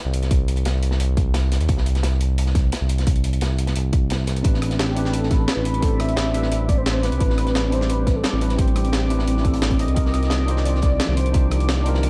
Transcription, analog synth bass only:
0.05 0.64 C2 medium
0.65 0.99 C2 medium
1.00 1.59 C2 medium
1.61 1.68 D#2 medium
1.69 2.02 C2 medium
2.03 2.71 C2 medium
2.81 3.40 C2 medium
3.41 3.75 C2 medium
3.76 4.27 C2 medium
4.27 4.43 C2 loud
4.45 4.78 A1 medium
4.79 5.47 A1 medium
5.57 6.16 A1 medium
6.17 6.50 A1 medium
6.51 7.11 A1 medium
7.12 7.20 C2 medium
7.21 7.54 A1 medium
7.55 8.23 A1 medium
8.33 8.92 A1 medium
8.93 9.26 A1 medium
9.27 9.87 A1 medium
9.88 9.96 C2 medium
9.97 10.30 C2 loud
10.31 10.99 C2 medium
11.09 11.68 C2 medium
11.69 12.02 C2 medium
12.03 12.10 C2 loud

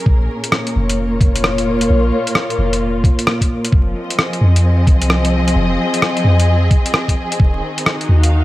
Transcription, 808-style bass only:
0.07 0.28 A#1 medium
0.76 1.20 F1 medium
1.21 1.89 F1 medium
1.90 2.11 A#1 loud
2.58 3.03 F1 medium
3.73 3.94 F1 loud
4.41 4.86 F2 medium
4.87 5.55 C2 medium
5.55 5.77 F1 loud
6.24 6.69 F2 medium
7.40 7.61 D#1 loud
8.09 8.44 D#2 medium

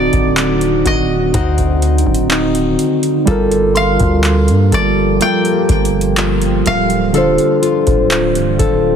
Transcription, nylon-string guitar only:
0.00 3.27 D3 medium
0.00 1.32 C4 medium
0.00 1.33 D#4 medium
0.00 0.84 F#4 medium
0.85 1.34 F#4 medium
1.34 3.37 C4 medium
1.34 2.29 D#4 medium
1.34 3.27 F#4 medium
2.31 3.37 D#4 medium
3.27 7.14 G3 medium
3.27 4.72 A4 medium
3.76 5.21 F4 medium
4.72 5.21 A4 medium
5.20 7.24 A#3 medium
5.20 6.17 F4 medium
5.20 7.14 A4 medium
6.17 7.62 F4 medium
7.14 8.96 D3 medium
7.14 8.58 A4 medium
7.62 8.96 F4 medium
8.59 8.96 A4 medium

